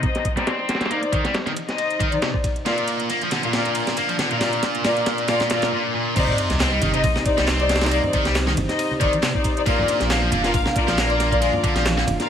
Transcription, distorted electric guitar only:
0.36 0.46 G3 medium
0.47 0.90 C4 medium
0.90 0.99 A#3 medium
1.13 1.24 D#3 medium
1.24 1.34 G3 medium
1.46 1.51 D#3 medium
2.00 2.11 D#3 medium
2.22 2.27 C3 medium
2.66 3.09 A#2 medium
3.10 3.21 A#3 medium
3.22 3.29 F3 medium
3.32 3.40 D3 medium
3.44 3.51 A#2 medium
3.54 3.96 A#2 medium
3.97 4.08 A#3 medium
4.08 4.16 F3 loud
4.19 4.28 D3 medium
4.31 4.38 A#2 medium
4.41 4.83 A#2 loud
4.84 5.27 A#2 loud
5.29 5.49 A#2 loud
5.51 5.71 A#2 loud
5.72 5.93 A#2 loud
5.95 6.15 A#2 loud
6.16 6.59 C3 loud
6.60 6.71 C4 medium
6.72 6.79 G3 loud
6.82 6.90 D#3 loud
6.94 7.01 C3 medium
7.38 7.47 G3 medium
7.48 7.91 C4 medium
7.91 8.00 A#3 loud
8.14 8.25 D#3 medium
8.26 8.35 G3 medium
8.47 8.52 D#3 medium
9.00 9.12 D#3 medium
9.22 9.28 C3 loud
9.66 10.09 A#2 loud
10.10 10.21 A#3 medium
10.22 10.29 F3 loud
10.32 10.41 D3 loud
10.44 10.51 A#2 medium
10.88 10.97 F3 medium
10.98 11.41 A#3 medium
11.41 11.50 G#3 loud
11.64 11.75 D3 medium
11.76 11.85 F3 medium
11.98 12.02 D3 medium

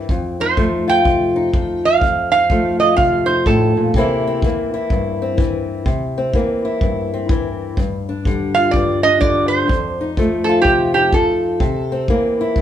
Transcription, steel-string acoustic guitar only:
0.00 0.40 C4 medium
0.10 2.00 F2 medium
0.40 1.35 D#4 medium
0.57 1.53 F3 medium
0.57 2.00 A3 medium
0.88 1.99 F4 medium
1.04 1.53 C3 medium
1.36 1.99 D#4 medium
1.54 2.00 F3 medium
2.01 3.91 F2 medium
2.33 3.27 D#4 medium
2.51 3.92 F3 medium
2.51 3.92 A3 medium
2.81 3.92 F4 medium
2.97 3.46 C3 medium
3.28 3.92 D#4 medium
3.46 3.77 A2 medium
3.77 3.94 A#2 medium
3.95 4.43 C3 medium
3.95 4.43 E3 medium
3.95 4.44 A#3 medium
3.95 4.27 C4 medium
3.95 4.73 E4 medium
4.27 5.21 C4 medium
4.44 5.36 E3 medium
4.44 5.85 A#3 medium
4.74 6.64 E4 medium
4.91 5.84 G2 medium
5.22 5.84 C4 medium
5.37 5.84 E3 medium
5.86 6.34 C3 medium
6.18 7.12 C4 medium
6.35 7.28 E3 medium
6.35 7.76 A#3 medium
6.65 7.78 E4 medium
6.82 7.75 G2 medium
7.14 7.76 C4 medium
7.30 7.75 E3 medium
7.78 8.73 G2 medium
8.09 9.04 D4 medium
8.26 9.20 D3 medium
8.26 9.70 G3 medium
8.56 9.67 F4 medium
8.74 9.67 G2 medium
9.05 9.68 D4 medium
9.21 9.69 D3 medium
9.68 11.58 F2 medium
10.01 10.96 D#4 medium
10.17 11.12 F3 medium
10.17 11.59 A3 medium
10.49 11.59 F4 medium
10.66 11.13 C3 medium
10.97 11.60 D#4 medium
11.14 11.59 F3 medium
11.60 12.08 C3 medium
11.92 12.62 C4 medium
12.10 12.62 E3 medium
12.10 12.62 A#3 medium
12.41 12.62 E4 medium
12.57 12.62 G2 medium

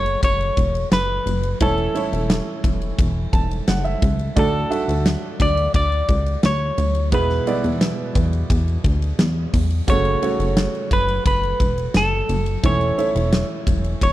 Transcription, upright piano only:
0.00 1.62 C#3 medium
0.00 1.61 A3 medium
0.00 1.61 C#4 medium
0.00 1.63 F#4 medium
0.00 1.61 A4 medium
0.00 1.61 C#5 medium
1.61 2.60 E3 medium
1.61 1.87 A3 medium
1.61 1.87 C#4 medium
1.61 1.87 E4 medium
1.61 1.88 A4 medium
1.61 1.88 C#5 medium
1.94 3.01 A3 medium
1.94 3.02 C#4 medium
1.94 3.02 E4 medium
1.94 3.02 A4 medium
1.94 3.02 C#5 medium
3.33 3.65 A5 medium
3.68 3.84 F#5 medium
3.84 4.33 E5 medium
4.36 5.36 A2 medium
4.36 4.63 A3 medium
4.36 4.63 D4 medium
4.36 4.63 F#4 medium
4.36 4.63 A4 medium
4.36 4.63 D5 medium
4.70 5.77 A3 medium
4.70 5.77 D4 medium
4.70 5.77 F#4 medium
4.70 5.77 A4 medium
4.70 5.78 E5 medium
7.12 8.12 B2 medium
7.12 7.39 G#3 medium
7.12 7.39 B3 medium
7.12 7.39 E4 medium
7.12 7.39 G#4 medium
7.12 7.39 B4 medium
7.46 8.53 G#3 medium
7.46 8.53 B3 medium
7.46 8.54 E4 medium
7.46 8.54 G#4 medium
7.46 8.54 D5 medium
9.87 10.87 C#3 medium
9.87 10.14 A3 medium
9.87 10.14 C#4 medium
9.87 10.14 F#4 medium
9.87 10.15 A4 medium
9.87 10.15 C#5 medium
10.22 11.29 A3 medium
10.22 11.29 C#4 medium
10.22 11.29 F#4 medium
10.22 11.29 A4 medium
10.22 11.29 C#5 medium
12.63 13.63 E3 medium
12.63 12.90 A3 medium
12.63 12.90 C#4 medium
12.63 12.90 E4 medium
12.63 12.90 A4 medium
12.63 12.91 C#5 medium
12.97 14.05 A3 medium
12.97 14.05 C#4 medium
12.97 14.05 E4 medium
12.97 14.05 A4 medium
12.97 14.05 C#5 medium

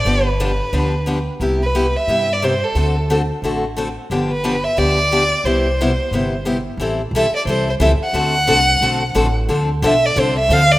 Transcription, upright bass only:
0.05 0.59 G1 medium
0.72 1.27 D2 medium
1.40 1.94 C2 medium
2.07 2.61 G2 medium
2.75 3.29 D2 medium
3.42 3.96 A1 medium
4.10 4.64 G1 medium
4.78 5.32 D2 medium
5.44 5.98 C2 medium
6.11 6.65 G1 medium
6.77 7.10 A1 medium
7.11 7.30 B1 medium
7.31 muted upright bass stroke soft
7.45 7.79 C2 medium
7.80 7.99 C#2 medium
8.00 muted upright bass stroke soft
8.13 8.46 D2 medium
8.48 8.80 C2 medium
8.81 9.14 B1 medium
9.15 9.47 A1 medium
9.49 9.81 D2 medium
9.82 10.14 B1 medium
10.16 10.48 C2 medium
10.49 10.79 D2 loud

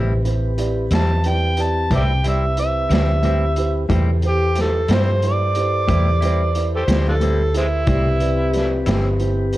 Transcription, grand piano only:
0.00 0.17 E4 medium
0.00 0.17 G4 medium
0.00 0.17 B4 medium
0.00 0.18 C5 medium
0.25 0.50 E4 soft
0.25 0.50 G4 soft
0.25 0.50 B4 soft
0.25 0.50 C5 medium
0.58 0.83 E4 medium
0.58 0.83 G4 soft
0.58 0.84 B4 medium
0.58 0.84 D5 medium
0.91 1.16 E4 soft
0.91 1.17 G4 soft
0.91 1.17 B4 soft
0.91 1.17 D5 soft
1.25 1.50 E4 soft
1.25 1.50 G4 soft
1.25 1.50 B4 soft
1.25 1.50 D5 medium
1.58 1.83 E4 soft
1.58 1.83 G4 soft
1.58 1.83 B4 soft
1.58 1.83 D5 medium
1.91 2.16 E4 soft
1.91 2.16 G4 soft
1.91 2.17 B4 soft
1.91 2.17 C5 soft
2.24 2.49 E4 soft
2.24 2.50 G4 soft
2.24 2.50 B4 soft
2.24 2.50 D5 soft
2.57 2.82 E4 soft
2.57 2.82 G4 soft
2.57 2.83 B4 soft
2.57 2.83 C5 soft
2.90 3.15 E4 soft
2.90 3.16 G4 soft
2.90 3.16 B4 soft
2.90 3.16 D5 medium
3.24 3.49 E4 soft
3.24 3.49 G4 soft
3.24 3.49 B4 soft
3.24 3.49 C5 soft
3.57 3.82 E4 medium
3.57 3.82 G4 medium
3.57 3.83 B4 medium
3.57 3.83 C5 medium
3.90 4.15 E4 medium
3.90 4.15 G4 medium
3.90 4.15 B4 medium
3.90 4.16 C5 medium
4.22 4.48 E4 soft
4.22 4.48 G4 soft
4.22 4.48 B4 soft
4.22 4.48 C5 medium
4.55 4.81 E4 soft
4.55 4.81 G4 soft
4.55 4.81 B4 soft
4.55 4.82 C5 medium
4.89 5.14 E4 soft
4.89 5.15 G4 soft
4.89 5.15 B4 soft
4.89 5.15 C5 soft
5.23 5.48 E4 soft
5.23 5.48 G4 soft
5.23 5.48 B4 soft
5.23 5.49 C5 medium
5.56 5.81 E4 soft
5.56 5.81 G4 soft
5.56 5.81 B4 soft
5.56 5.82 C5 medium
5.89 6.14 E4 soft
5.89 6.14 G4 soft
5.89 6.14 B4 soft
5.89 6.15 C5 soft
6.23 6.47 E4 medium
6.23 6.48 G4 soft
6.23 6.48 B4 medium
6.23 6.48 C5 medium
6.55 6.80 E4 soft
6.55 6.81 G4 soft
6.55 6.81 B4 soft
6.55 6.81 D5 soft
6.88 7.13 E4 soft
6.88 7.13 G4 soft
6.88 7.14 B4 soft
6.88 7.14 D5 soft
7.20 7.46 E4 soft
7.20 7.46 G4 soft
7.20 7.47 B4 soft
7.20 7.47 C5 soft
7.54 7.79 E4 soft
7.54 7.79 G4 soft
7.54 7.80 B4 soft
7.54 7.80 C5 medium
7.88 8.13 E4 soft
7.88 8.13 G4 medium
7.88 8.13 B4 medium
7.88 8.13 D5 medium
8.20 8.46 E4 soft
8.20 8.46 G4 soft
8.20 8.46 B4 soft
8.20 8.47 D5 medium
8.52 8.78 E4 medium
8.52 8.79 G4 medium
8.52 8.79 B4 soft
8.52 8.80 D5 medium
8.87 9.12 E4 medium
8.87 9.12 G4 soft
8.87 9.13 B4 soft
8.87 9.13 C5 medium
9.20 9.45 E4 medium
9.20 9.46 G4 soft
9.20 9.46 B4 medium
9.20 9.46 C5 medium
9.54 9.57 E4 medium

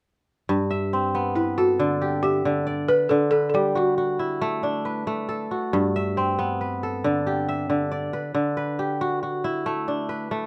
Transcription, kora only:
0.49 2.83 G2 medium
0.71 1.74 E5 medium
0.93 2.73 C4 medium
1.15 3.01 B3 medium
1.36 2.59 B4 medium
1.58 2.90 A4 medium
1.79 2.44 D3 medium
2.02 3.43 G4 medium
2.24 3.27 E5 medium
2.45 3.09 D3 medium
2.67 3.77 D5 medium
2.89 3.31 B4 medium
3.11 5.45 D3 medium
3.32 4.55 B4 medium
3.54 5.79 G3 medium
3.75 3.97 F#4 medium
3.98 5.44 F#4 medium
4.19 5.76 E4 medium
4.42 5.07 A3 medium
4.63 6.31 D4 medium
4.85 6.08 B4 medium
5.07 7.07 A3 medium
5.29 6.60 A4 medium
5.51 6.97 F#4 medium
5.73 8.07 G2 medium
5.96 6.99 E5 medium
6.17 7.97 C4 medium
6.39 8.25 B3 medium
6.61 7.84 B4 medium
6.83 8.15 A4 medium
7.04 7.68 D3 medium
7.27 8.68 G4 medium
7.49 8.52 E5 medium
7.70 8.33 D3 medium
7.92 9.02 D5 medium
8.13 8.57 B4 medium
8.35 10.46 D3 medium
8.57 9.80 B4 medium
8.79 10.20 G4 medium
9.01 9.22 F#4 medium
9.23 10.46 F#4 medium
9.44 10.46 E4 medium
9.66 10.31 A3 medium
9.88 10.46 D4 soft
10.09 10.46 B4 medium
10.31 10.46 A3 medium

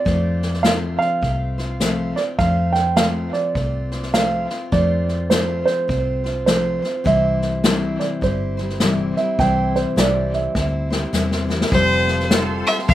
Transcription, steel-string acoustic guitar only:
0.05 0.63 F3 medium
0.05 0.63 A3 medium
0.05 0.65 C4 medium
0.05 0.65 F4 medium
0.05 0.66 C5 medium
0.64 1.23 F3 medium
0.64 1.20 A3 medium
0.64 1.22 C4 medium
0.64 1.23 F4 medium
0.64 1.24 C5 medium
1.22 1.58 A3 medium
1.22 1.59 C4 medium
1.22 1.58 F4 medium
1.22 1.57 C5 medium
1.58 1.81 C4 soft
1.58 1.81 F4 soft
1.58 1.81 C5 soft
1.81 2.17 F3 medium
1.81 2.17 A3 medium
1.81 2.17 C4 medium
1.81 2.17 F4 medium
1.81 2.16 C5 medium
2.17 2.39 C4 soft
2.17 2.40 F4 soft
2.17 2.39 C5 soft
2.39 2.96 F3 medium
2.39 2.97 A3 medium
2.39 2.98 C4 medium
2.39 2.98 F4 medium
2.39 2.99 C5 medium
2.98 3.56 F3 medium
2.98 3.54 A3 medium
2.98 3.56 C4 medium
2.98 3.57 F4 medium
2.98 3.59 C5 medium
3.55 3.91 A3 soft
3.55 3.92 C4 medium
3.55 3.93 F4 medium
3.55 3.91 C5 medium
3.92 4.15 C4 soft
3.92 4.15 F4 soft
3.92 4.14 C5 medium
4.15 4.50 F3 medium
4.15 4.51 A3 medium
4.15 4.51 C4 medium
4.15 4.51 F4 medium
4.15 4.49 C5 medium
4.50 4.72 C4 soft
4.50 4.72 F4 soft
4.50 4.73 C5 soft
4.72 5.29 F3 medium
4.72 5.30 A3 medium
4.72 5.32 C4 medium
4.72 5.31 F4 medium
4.72 5.33 C5 medium
5.30 5.89 F3 medium
5.30 5.87 A3 medium
5.30 5.89 C4 medium
5.30 5.89 F4 medium
5.30 5.91 C5 medium
5.88 6.24 A3 medium
5.88 6.25 C4 medium
5.88 6.24 F4 medium
5.88 6.23 C5 medium
6.24 6.47 C4 soft
6.24 6.47 F4 soft
6.24 6.47 C5 medium
6.47 6.83 F3 medium
6.47 6.83 A3 medium
6.47 6.83 C4 medium
6.47 6.82 F4 medium
6.47 6.81 C5 medium
6.82 7.04 C4 soft
6.82 7.05 F4 soft
6.82 7.05 C5 soft
7.04 7.62 C3 medium
7.04 7.63 E3 medium
7.04 7.64 G3 medium
7.04 7.65 C4 medium
7.04 7.64 E4 medium
7.04 7.66 C5 medium
7.64 8.22 C3 medium
7.64 8.23 E3 medium
7.64 8.21 G3 medium
7.64 8.23 C4 medium
7.64 8.23 E4 medium
7.64 8.24 C5 medium
8.21 8.57 G3 medium
8.21 8.58 C4 soft
8.21 8.58 E4 medium
8.21 8.56 C5 medium
8.57 8.81 G3 soft
8.57 8.81 C4 soft
8.57 8.81 E4 soft
8.57 8.80 C5 medium
8.81 9.16 C3 medium
8.81 9.17 E3 medium
8.81 9.17 G3 medium
8.81 9.17 C4 medium
8.81 9.18 E4 medium
8.81 9.16 C5 medium
9.17 9.39 G3 soft
9.17 9.39 C4 soft
9.17 9.39 E4 soft
9.17 9.39 C5 soft
9.39 9.95 C3 medium
9.39 9.96 E3 medium
9.39 9.96 G3 medium
9.39 9.96 C4 medium
9.39 9.97 E4 medium
9.39 9.97 C5 medium
9.96 10.55 C3 medium
9.96 10.56 E3 medium
9.96 10.54 G3 medium
9.96 10.55 C4 medium
9.96 10.56 E4 medium
9.96 10.56 C5 medium
10.55 10.91 G3 soft
10.55 10.91 C4 medium
10.55 10.90 E4 medium
10.55 10.89 C5 medium
10.90 11.12 G3 soft
10.90 11.13 C4 soft
10.90 11.13 E4 soft
10.90 11.13 C5 soft
11.13 11.49 C3 medium
11.13 11.49 E3 medium
11.13 11.49 G3 medium
11.13 11.50 C4 medium
11.13 11.48 E4 medium
11.13 11.47 C5 medium
11.48 11.71 G3 soft
11.48 11.71 C4 soft
11.48 11.72 E4 medium
11.48 11.72 C5 medium
11.71 12.30 F3 medium
11.71 12.29 G3 medium
11.71 12.30 C4 medium
11.71 12.31 G4 medium
11.71 12.31 A4 medium
12.29 12.88 G3 medium
12.29 12.89 C4 medium
12.29 12.89 G4 medium
12.29 12.89 A4 medium
12.88 12.94 F3 medium
12.88 12.94 G3 medium
12.88 12.94 C4 medium
12.88 12.94 G4 medium
12.88 12.94 A4 medium

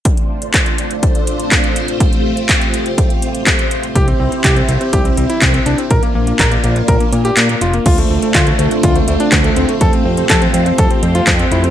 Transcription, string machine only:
0.05 3.92 A3 medium
0.05 5.87 C4 medium
0.05 1.98 D4 medium
0.05 3.92 F4 medium
0.05 3.92 C5 medium
2.00 5.87 G4 medium
3.95 5.89 E4 medium
5.91 7.84 A#3 medium
5.91 7.84 D4 medium
5.91 7.84 F4 medium
7.86 11.70 A3 medium
7.86 11.70 C4 medium
7.86 9.79 D4 medium
7.86 9.79 F4 medium
7.86 11.70 C5 medium
9.81 11.70 F4 medium
9.81 11.70 G4 medium

